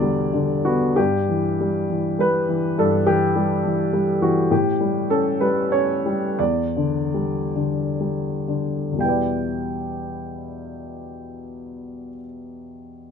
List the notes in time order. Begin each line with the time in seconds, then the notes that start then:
Already playing: E2 B2 D3 D5
0.02 G3
0.33 D3
0.65 B3 F#4
0.96 G2 G4
1.29 E3
1.61 G3
1.90 E3
2.19 G3 B4
2.49 E3
2.78 G2 A4
3.07 E3 G4
3.36 G3
3.65 E3
3.93 G3
4.22 E3 F#4
4.51 A2 G4
4.81 G3
5.10 C#4 A4
5.41 G3 B4
5.72 C#4 C#5
6.06 G3
6.39 E2 D5
6.77 D3
7.14 G3
7.56 D3
8.01 G3
8.48 D3
8.92 E2 B2
8.98 G3 E4 G5
9.05 B4 D5